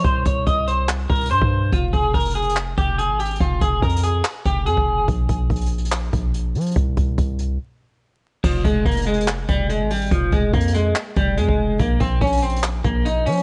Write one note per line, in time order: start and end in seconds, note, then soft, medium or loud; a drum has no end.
0.05 0.25 C2 loud
0.05 0.24 C5 medium
0.05 kick loud
0.05 closed hi-hat medium
0.25 0.46 C2 loud
0.25 0.45 C#5 medium
0.25 kick medium
0.25 closed hi-hat medium
0.46 1.07 C2 loud
0.46 0.66 D#5 medium
0.46 kick medium
0.46 closed hi-hat medium
0.67 0.87 C5 medium
0.67 closed hi-hat medium
0.89 clap loud
0.89 closed hi-hat medium
1.10 1.32 C2 loud
1.10 1.29 A#4 medium
1.10 kick loud
1.10 closed hi-hat soft
1.15 closed hi-hat medium
1.21 closed hi-hat medium
1.26 closed hi-hat medium
1.31 1.41 G2 loud
1.31 1.70 C5 medium
1.31 closed hi-hat medium
1.42 1.71 G2 loud
1.42 kick loud
1.73 1.93 F1 loud
1.73 1.92 F4 medium
1.73 kick loud
1.73 closed hi-hat medium
1.93 2.14 F1 loud
1.93 2.13 G#4 medium
1.93 kick medium
1.93 closed hi-hat medium
2.14 2.75 F1 loud
2.14 2.34 A#4 medium
2.14 kick medium
2.14 closed hi-hat medium
2.20 closed hi-hat medium
2.26 closed hi-hat medium
2.31 closed hi-hat medium
2.35 2.55 G#4 medium
2.35 closed hi-hat soft
2.42 closed hi-hat medium
2.49 closed hi-hat medium
2.56 clap loud
2.56 closed hi-hat medium
2.77 3.11 F1 loud
2.77 2.97 G4 medium
2.77 kick loud
2.77 closed hi-hat medium
2.98 3.18 G#4 medium
2.98 closed hi-hat medium
3.10 3.39 G#1 medium
3.19 3.39 G4 medium
3.19 closed hi-hat medium
3.25 closed hi-hat medium
3.31 closed hi-hat medium
3.36 closed hi-hat medium
3.40 3.61 F1 loud
3.40 3.60 F4 medium
3.40 kick loud
3.40 closed hi-hat medium
3.61 3.82 F1 loud
3.61 3.81 G#4 medium
3.61 kick loud
3.61 closed hi-hat medium
3.82 4.23 F2 loud
3.82 4.02 A#4 medium
3.82 kick medium
3.82 closed hi-hat medium
3.89 closed hi-hat medium
3.96 closed hi-hat medium
4.03 4.23 G#4 medium
4.03 closed hi-hat medium
4.24 clap loud
4.24 closed hi-hat medium
4.45 4.68 F1 loud
4.45 4.65 G4 medium
4.45 kick loud
4.45 closed hi-hat medium
4.66 4.77 F2 loud
4.66 5.06 G#4 medium
4.66 closed hi-hat medium
4.77 5.07 F1 loud
4.77 kick medium
5.08 5.28 A#1 loud
5.08 kick loud
5.08 closed hi-hat medium
5.29 5.49 A#1 loud
5.29 kick medium
5.29 closed hi-hat medium
5.50 6.11 A#1 loud
5.50 kick medium
5.50 closed hi-hat medium
5.56 closed hi-hat medium
5.61 closed hi-hat medium
5.66 closed hi-hat medium
5.71 closed hi-hat soft
5.78 closed hi-hat medium
5.85 closed hi-hat medium
5.92 clap loud
5.92 closed hi-hat medium
6.13 6.56 A#1 loud
6.13 kick loud
6.13 closed hi-hat medium
6.34 closed hi-hat medium
6.55 6.75 F3 loud
6.55 closed hi-hat medium
6.61 closed hi-hat medium
6.66 closed hi-hat medium
6.71 closed hi-hat medium
6.76 6.96 C2 loud
6.76 kick loud
6.76 closed hi-hat medium
6.97 7.17 C2 loud
6.97 kick loud
6.97 closed hi-hat medium
7.18 7.58 C2 loud
7.18 kick medium
7.18 closed hi-hat medium
7.39 closed hi-hat medium
8.44 8.64 F1 loud
8.44 8.63 F3 medium
8.44 kick loud
8.44 crash loud
8.64 8.85 F1 loud
8.64 8.84 G#3 medium
8.64 kick loud
8.64 closed hi-hat medium
8.86 9.46 F1 loud
8.86 9.05 A#3 medium
8.86 kick medium
8.86 closed hi-hat medium
8.91 closed hi-hat medium
8.97 closed hi-hat medium
9.02 closed hi-hat medium
9.07 9.26 G#3 medium
9.07 closed hi-hat soft
9.14 closed hi-hat medium
9.21 closed hi-hat medium
9.28 clap loud
9.28 closed hi-hat medium
9.48 9.82 F1 loud
9.48 9.68 G3 medium
9.48 kick loud
9.48 closed hi-hat medium
9.70 9.89 G#3 medium
9.70 closed hi-hat medium
9.81 10.10 G#1 loud
9.91 10.10 G3 medium
9.91 closed hi-hat medium
9.91 open hi-hat medium
9.96 closed hi-hat medium
10.02 closed hi-hat medium
10.07 closed hi-hat medium
10.12 10.32 F1 loud
10.12 10.31 F3 medium
10.12 kick loud
10.12 closed hi-hat medium
10.32 10.53 F1 loud
10.32 10.52 G#3 medium
10.32 kick loud
10.32 closed hi-hat medium
10.54 10.94 F2 loud
10.54 10.73 A#3 medium
10.54 kick medium
10.54 closed hi-hat medium
10.61 closed hi-hat medium
10.68 closed hi-hat medium
10.74 10.94 G#3 medium
10.74 closed hi-hat medium
10.95 clap loud
10.95 closed hi-hat medium
11.16 11.39 F1 loud
11.16 11.36 G3 medium
11.16 kick loud
11.16 closed hi-hat medium
11.37 11.48 F2 loud
11.37 11.77 G#3 medium
11.37 closed hi-hat medium
11.48 11.78 F1 loud
11.48 kick medium
11.79 12.00 A#1 loud
11.79 11.99 A#3 medium
11.79 kick loud
11.79 closed hi-hat medium
12.00 12.21 A#1 loud
12.00 12.20 C4 medium
12.00 kick medium
12.00 closed hi-hat medium
12.21 12.82 A#1 loud
12.21 12.41 C#4 medium
12.21 kick medium
12.21 closed hi-hat medium
12.27 closed hi-hat medium
12.33 closed hi-hat medium
12.37 closed hi-hat medium
12.42 12.62 C4 medium
12.42 closed hi-hat soft
12.42 open hi-hat medium
12.49 closed hi-hat medium
12.56 closed hi-hat medium
12.63 clap loud
12.63 closed hi-hat medium
12.84 13.28 A#1 loud
12.84 13.04 A#3 medium
12.84 kick loud
12.84 closed hi-hat medium
13.05 13.25 D#4 medium
13.05 closed hi-hat medium
13.26 13.43 F3 loud
13.26 13.43 C#4 medium
13.26 closed hi-hat medium
13.32 closed hi-hat medium
13.37 closed hi-hat medium